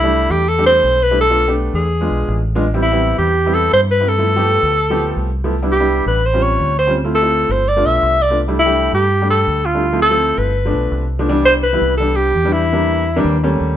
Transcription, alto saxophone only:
0, 0, Header, 1, 2, 480
1, 0, Start_track
1, 0, Key_signature, 0, "major"
1, 0, Tempo, 359497
1, 1614, Time_signature, 4, 2, 24, 8
1, 18384, End_track
2, 0, Start_track
2, 0, Title_t, "Alto saxophone"
2, 0, Program_c, 0, 65
2, 0, Note_on_c, 0, 64, 102
2, 410, Note_on_c, 0, 67, 90
2, 430, Note_off_c, 0, 64, 0
2, 647, Note_on_c, 0, 69, 89
2, 667, Note_off_c, 0, 67, 0
2, 876, Note_off_c, 0, 69, 0
2, 884, Note_on_c, 0, 72, 104
2, 1372, Note_on_c, 0, 71, 99
2, 1392, Note_off_c, 0, 72, 0
2, 1606, Note_off_c, 0, 71, 0
2, 1614, Note_on_c, 0, 69, 102
2, 2060, Note_off_c, 0, 69, 0
2, 2333, Note_on_c, 0, 68, 79
2, 3239, Note_off_c, 0, 68, 0
2, 3769, Note_on_c, 0, 64, 94
2, 4217, Note_off_c, 0, 64, 0
2, 4247, Note_on_c, 0, 67, 91
2, 4729, Note_on_c, 0, 69, 97
2, 4749, Note_off_c, 0, 67, 0
2, 4970, Note_off_c, 0, 69, 0
2, 4984, Note_on_c, 0, 72, 110
2, 5089, Note_off_c, 0, 72, 0
2, 5219, Note_on_c, 0, 71, 92
2, 5453, Note_on_c, 0, 69, 100
2, 5473, Note_off_c, 0, 71, 0
2, 7132, Note_off_c, 0, 69, 0
2, 7635, Note_on_c, 0, 67, 94
2, 8071, Note_off_c, 0, 67, 0
2, 8110, Note_on_c, 0, 71, 83
2, 8355, Note_on_c, 0, 72, 91
2, 8375, Note_off_c, 0, 71, 0
2, 8579, Note_on_c, 0, 73, 92
2, 8599, Note_off_c, 0, 72, 0
2, 9056, Note_off_c, 0, 73, 0
2, 9063, Note_on_c, 0, 72, 95
2, 9282, Note_off_c, 0, 72, 0
2, 9546, Note_on_c, 0, 69, 106
2, 10030, Note_on_c, 0, 72, 93
2, 10050, Note_off_c, 0, 69, 0
2, 10259, Note_on_c, 0, 74, 100
2, 10279, Note_off_c, 0, 72, 0
2, 10494, Note_on_c, 0, 76, 105
2, 10514, Note_off_c, 0, 74, 0
2, 10979, Note_on_c, 0, 74, 93
2, 10999, Note_off_c, 0, 76, 0
2, 11217, Note_off_c, 0, 74, 0
2, 11473, Note_on_c, 0, 64, 100
2, 11912, Note_off_c, 0, 64, 0
2, 11943, Note_on_c, 0, 67, 94
2, 12387, Note_off_c, 0, 67, 0
2, 12420, Note_on_c, 0, 69, 87
2, 12890, Note_on_c, 0, 65, 83
2, 12910, Note_off_c, 0, 69, 0
2, 13371, Note_off_c, 0, 65, 0
2, 13379, Note_on_c, 0, 69, 102
2, 13855, Note_on_c, 0, 71, 84
2, 13876, Note_off_c, 0, 69, 0
2, 14817, Note_off_c, 0, 71, 0
2, 15291, Note_on_c, 0, 72, 113
2, 15401, Note_off_c, 0, 72, 0
2, 15529, Note_on_c, 0, 71, 100
2, 15979, Note_off_c, 0, 71, 0
2, 15989, Note_on_c, 0, 69, 94
2, 16235, Note_on_c, 0, 67, 94
2, 16255, Note_off_c, 0, 69, 0
2, 16722, Note_on_c, 0, 64, 89
2, 16742, Note_off_c, 0, 67, 0
2, 17688, Note_off_c, 0, 64, 0
2, 18384, End_track
0, 0, End_of_file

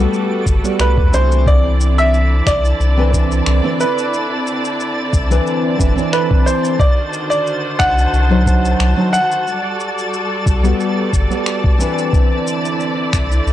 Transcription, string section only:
0, 0, Header, 1, 2, 480
1, 0, Start_track
1, 0, Tempo, 666667
1, 1054, Time_signature, 4, 2, 24, 8
1, 9741, End_track
2, 0, Start_track
2, 0, Title_t, "String section"
2, 0, Program_c, 0, 48
2, 0, Note_on_c, 0, 55, 74
2, 0, Note_on_c, 0, 57, 77
2, 0, Note_on_c, 0, 66, 89
2, 0, Note_on_c, 0, 69, 92
2, 1027, Note_off_c, 0, 66, 0
2, 1033, Note_off_c, 0, 55, 0
2, 1033, Note_off_c, 0, 57, 0
2, 1033, Note_off_c, 0, 69, 0
2, 1052, Note_on_c, 0, 74, 87
2, 1053, Note_on_c, 0, 50, 75
2, 1053, Note_on_c, 0, 64, 75
2, 1054, Note_on_c, 0, 60, 72
2, 4864, Note_off_c, 0, 74, 0
2, 4865, Note_off_c, 0, 50, 0
2, 4865, Note_off_c, 0, 60, 0
2, 4865, Note_off_c, 0, 64, 0
2, 4887, Note_on_c, 0, 51, 81
2, 4888, Note_on_c, 0, 66, 71
2, 4888, Note_on_c, 0, 72, 90
2, 4889, Note_on_c, 0, 50, 72
2, 6792, Note_off_c, 0, 50, 0
2, 6792, Note_off_c, 0, 51, 0
2, 6792, Note_off_c, 0, 72, 0
2, 6809, Note_on_c, 0, 55, 82
2, 6809, Note_on_c, 0, 69, 69
2, 6809, Note_on_c, 0, 74, 94
2, 8702, Note_off_c, 0, 66, 0
2, 8712, Note_off_c, 0, 55, 0
2, 8712, Note_off_c, 0, 69, 0
2, 8732, Note_on_c, 0, 50, 79
2, 8733, Note_on_c, 0, 60, 71
2, 8734, Note_on_c, 0, 64, 73
2, 9741, Note_off_c, 0, 50, 0
2, 9741, Note_off_c, 0, 60, 0
2, 9741, Note_off_c, 0, 64, 0
2, 9741, Note_off_c, 0, 74, 0
2, 9741, End_track
0, 0, End_of_file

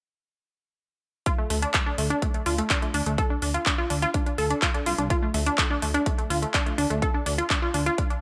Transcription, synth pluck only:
0, 0, Header, 1, 2, 480
1, 0, Start_track
1, 0, Key_signature, -1, "minor"
1, 0, Tempo, 480000
1, 1264, Time_signature, 4, 2, 24, 8
1, 8211, End_track
2, 0, Start_track
2, 0, Title_t, "Synth pluck"
2, 0, Program_c, 0, 84
2, 1263, Note_on_c, 0, 65, 98
2, 1334, Note_off_c, 0, 65, 0
2, 1384, Note_on_c, 0, 57, 62
2, 1454, Note_off_c, 0, 57, 0
2, 1503, Note_on_c, 0, 57, 64
2, 1574, Note_off_c, 0, 57, 0
2, 1624, Note_on_c, 0, 62, 82
2, 1694, Note_off_c, 0, 62, 0
2, 1742, Note_on_c, 0, 57, 61
2, 1814, Note_off_c, 0, 57, 0
2, 1864, Note_on_c, 0, 62, 83
2, 1934, Note_off_c, 0, 62, 0
2, 1982, Note_on_c, 0, 57, 60
2, 2054, Note_off_c, 0, 57, 0
2, 2104, Note_on_c, 0, 62, 92
2, 2174, Note_off_c, 0, 62, 0
2, 2223, Note_on_c, 0, 57, 64
2, 2294, Note_off_c, 0, 57, 0
2, 2344, Note_on_c, 0, 57, 64
2, 2414, Note_off_c, 0, 57, 0
2, 2462, Note_on_c, 0, 65, 83
2, 2534, Note_off_c, 0, 65, 0
2, 2585, Note_on_c, 0, 57, 61
2, 2655, Note_off_c, 0, 57, 0
2, 2702, Note_on_c, 0, 62, 86
2, 2774, Note_off_c, 0, 62, 0
2, 2824, Note_on_c, 0, 57, 59
2, 2894, Note_off_c, 0, 57, 0
2, 2943, Note_on_c, 0, 62, 90
2, 3015, Note_off_c, 0, 62, 0
2, 3065, Note_on_c, 0, 57, 64
2, 3135, Note_off_c, 0, 57, 0
2, 3182, Note_on_c, 0, 69, 97
2, 3254, Note_off_c, 0, 69, 0
2, 3304, Note_on_c, 0, 62, 62
2, 3374, Note_off_c, 0, 62, 0
2, 3423, Note_on_c, 0, 62, 63
2, 3495, Note_off_c, 0, 62, 0
2, 3544, Note_on_c, 0, 65, 83
2, 3614, Note_off_c, 0, 65, 0
2, 3663, Note_on_c, 0, 62, 62
2, 3735, Note_off_c, 0, 62, 0
2, 3784, Note_on_c, 0, 65, 87
2, 3854, Note_off_c, 0, 65, 0
2, 3902, Note_on_c, 0, 62, 62
2, 3974, Note_off_c, 0, 62, 0
2, 4024, Note_on_c, 0, 65, 96
2, 4094, Note_off_c, 0, 65, 0
2, 4142, Note_on_c, 0, 62, 60
2, 4214, Note_off_c, 0, 62, 0
2, 4265, Note_on_c, 0, 62, 61
2, 4335, Note_off_c, 0, 62, 0
2, 4383, Note_on_c, 0, 69, 91
2, 4454, Note_off_c, 0, 69, 0
2, 4505, Note_on_c, 0, 62, 65
2, 4575, Note_off_c, 0, 62, 0
2, 4623, Note_on_c, 0, 65, 87
2, 4694, Note_off_c, 0, 65, 0
2, 4744, Note_on_c, 0, 62, 62
2, 4815, Note_off_c, 0, 62, 0
2, 4864, Note_on_c, 0, 65, 92
2, 4935, Note_off_c, 0, 65, 0
2, 4985, Note_on_c, 0, 62, 59
2, 5055, Note_off_c, 0, 62, 0
2, 5104, Note_on_c, 0, 65, 95
2, 5175, Note_off_c, 0, 65, 0
2, 5225, Note_on_c, 0, 57, 63
2, 5295, Note_off_c, 0, 57, 0
2, 5343, Note_on_c, 0, 57, 64
2, 5415, Note_off_c, 0, 57, 0
2, 5465, Note_on_c, 0, 62, 83
2, 5535, Note_off_c, 0, 62, 0
2, 5584, Note_on_c, 0, 57, 65
2, 5655, Note_off_c, 0, 57, 0
2, 5705, Note_on_c, 0, 62, 86
2, 5775, Note_off_c, 0, 62, 0
2, 5823, Note_on_c, 0, 57, 62
2, 5895, Note_off_c, 0, 57, 0
2, 5944, Note_on_c, 0, 62, 91
2, 6014, Note_off_c, 0, 62, 0
2, 6062, Note_on_c, 0, 57, 63
2, 6134, Note_off_c, 0, 57, 0
2, 6183, Note_on_c, 0, 57, 63
2, 6254, Note_off_c, 0, 57, 0
2, 6302, Note_on_c, 0, 65, 88
2, 6374, Note_off_c, 0, 65, 0
2, 6424, Note_on_c, 0, 57, 64
2, 6494, Note_off_c, 0, 57, 0
2, 6543, Note_on_c, 0, 62, 86
2, 6614, Note_off_c, 0, 62, 0
2, 6663, Note_on_c, 0, 57, 62
2, 6734, Note_off_c, 0, 57, 0
2, 6782, Note_on_c, 0, 62, 92
2, 6854, Note_off_c, 0, 62, 0
2, 6903, Note_on_c, 0, 57, 63
2, 6974, Note_off_c, 0, 57, 0
2, 7022, Note_on_c, 0, 69, 101
2, 7094, Note_off_c, 0, 69, 0
2, 7144, Note_on_c, 0, 62, 62
2, 7214, Note_off_c, 0, 62, 0
2, 7262, Note_on_c, 0, 62, 66
2, 7334, Note_off_c, 0, 62, 0
2, 7383, Note_on_c, 0, 65, 86
2, 7454, Note_off_c, 0, 65, 0
2, 7502, Note_on_c, 0, 62, 66
2, 7574, Note_off_c, 0, 62, 0
2, 7623, Note_on_c, 0, 65, 86
2, 7694, Note_off_c, 0, 65, 0
2, 7742, Note_on_c, 0, 62, 64
2, 7814, Note_off_c, 0, 62, 0
2, 7864, Note_on_c, 0, 65, 92
2, 7934, Note_off_c, 0, 65, 0
2, 7982, Note_on_c, 0, 62, 62
2, 8054, Note_off_c, 0, 62, 0
2, 8104, Note_on_c, 0, 62, 61
2, 8174, Note_off_c, 0, 62, 0
2, 8211, End_track
0, 0, End_of_file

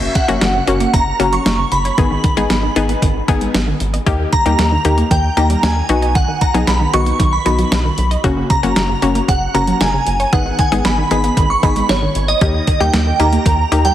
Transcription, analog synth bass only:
0, 0, Header, 1, 2, 480
1, 0, Start_track
1, 0, Key_signature, 5, "minor"
1, 0, Tempo, 521739
1, 1821, Time_signature, 4, 2, 24, 8
1, 12829, End_track
2, 0, Start_track
2, 0, Title_t, "Analog synth bass"
2, 0, Program_c, 0, 38
2, 261, Note_on_c, 0, 30, 90
2, 345, Note_off_c, 0, 30, 0
2, 381, Note_on_c, 0, 30, 98
2, 549, Note_off_c, 0, 30, 0
2, 620, Note_on_c, 0, 30, 97
2, 789, Note_off_c, 0, 30, 0
2, 861, Note_on_c, 0, 30, 103
2, 1029, Note_off_c, 0, 30, 0
2, 1101, Note_on_c, 0, 30, 101
2, 1269, Note_off_c, 0, 30, 0
2, 1340, Note_on_c, 0, 30, 102
2, 1508, Note_off_c, 0, 30, 0
2, 1580, Note_on_c, 0, 30, 99
2, 1749, Note_off_c, 0, 30, 0
2, 1821, Note_on_c, 0, 32, 97
2, 1989, Note_off_c, 0, 32, 0
2, 2180, Note_on_c, 0, 32, 85
2, 2265, Note_off_c, 0, 32, 0
2, 2300, Note_on_c, 0, 32, 102
2, 2468, Note_off_c, 0, 32, 0
2, 2541, Note_on_c, 0, 32, 107
2, 2709, Note_off_c, 0, 32, 0
2, 2780, Note_on_c, 0, 32, 104
2, 2949, Note_off_c, 0, 32, 0
2, 3020, Note_on_c, 0, 32, 94
2, 3188, Note_off_c, 0, 32, 0
2, 3260, Note_on_c, 0, 32, 99
2, 3429, Note_off_c, 0, 32, 0
2, 3501, Note_on_c, 0, 32, 95
2, 3669, Note_off_c, 0, 32, 0
2, 3741, Note_on_c, 0, 39, 105
2, 3909, Note_off_c, 0, 39, 0
2, 4101, Note_on_c, 0, 39, 97
2, 4185, Note_off_c, 0, 39, 0
2, 4221, Note_on_c, 0, 39, 100
2, 4389, Note_off_c, 0, 39, 0
2, 4461, Note_on_c, 0, 39, 99
2, 4629, Note_off_c, 0, 39, 0
2, 4700, Note_on_c, 0, 39, 105
2, 4868, Note_off_c, 0, 39, 0
2, 4940, Note_on_c, 0, 39, 93
2, 5108, Note_off_c, 0, 39, 0
2, 5180, Note_on_c, 0, 39, 92
2, 5348, Note_off_c, 0, 39, 0
2, 5420, Note_on_c, 0, 35, 101
2, 5757, Note_off_c, 0, 35, 0
2, 6020, Note_on_c, 0, 35, 103
2, 6104, Note_off_c, 0, 35, 0
2, 6141, Note_on_c, 0, 35, 106
2, 6309, Note_off_c, 0, 35, 0
2, 6381, Note_on_c, 0, 35, 98
2, 6549, Note_off_c, 0, 35, 0
2, 6620, Note_on_c, 0, 35, 101
2, 6788, Note_off_c, 0, 35, 0
2, 6861, Note_on_c, 0, 35, 91
2, 7029, Note_off_c, 0, 35, 0
2, 7100, Note_on_c, 0, 35, 93
2, 7268, Note_off_c, 0, 35, 0
2, 7340, Note_on_c, 0, 35, 97
2, 7509, Note_off_c, 0, 35, 0
2, 7581, Note_on_c, 0, 30, 110
2, 7749, Note_off_c, 0, 30, 0
2, 7941, Note_on_c, 0, 30, 91
2, 8025, Note_off_c, 0, 30, 0
2, 8061, Note_on_c, 0, 30, 100
2, 8229, Note_off_c, 0, 30, 0
2, 8301, Note_on_c, 0, 30, 101
2, 8469, Note_off_c, 0, 30, 0
2, 8541, Note_on_c, 0, 30, 103
2, 8709, Note_off_c, 0, 30, 0
2, 8781, Note_on_c, 0, 30, 97
2, 8949, Note_off_c, 0, 30, 0
2, 9021, Note_on_c, 0, 30, 97
2, 9189, Note_off_c, 0, 30, 0
2, 9262, Note_on_c, 0, 30, 96
2, 9429, Note_off_c, 0, 30, 0
2, 9501, Note_on_c, 0, 32, 103
2, 9669, Note_off_c, 0, 32, 0
2, 9862, Note_on_c, 0, 32, 88
2, 9945, Note_off_c, 0, 32, 0
2, 9981, Note_on_c, 0, 32, 104
2, 10149, Note_off_c, 0, 32, 0
2, 10221, Note_on_c, 0, 32, 104
2, 10389, Note_off_c, 0, 32, 0
2, 10460, Note_on_c, 0, 32, 108
2, 10629, Note_off_c, 0, 32, 0
2, 10700, Note_on_c, 0, 32, 94
2, 10869, Note_off_c, 0, 32, 0
2, 10941, Note_on_c, 0, 32, 100
2, 11109, Note_off_c, 0, 32, 0
2, 11181, Note_on_c, 0, 32, 95
2, 11349, Note_off_c, 0, 32, 0
2, 11421, Note_on_c, 0, 39, 107
2, 11589, Note_off_c, 0, 39, 0
2, 11780, Note_on_c, 0, 39, 97
2, 11864, Note_off_c, 0, 39, 0
2, 11900, Note_on_c, 0, 39, 100
2, 12068, Note_off_c, 0, 39, 0
2, 12141, Note_on_c, 0, 39, 104
2, 12309, Note_off_c, 0, 39, 0
2, 12381, Note_on_c, 0, 39, 107
2, 12549, Note_off_c, 0, 39, 0
2, 12621, Note_on_c, 0, 39, 101
2, 12789, Note_off_c, 0, 39, 0
2, 12829, End_track
0, 0, End_of_file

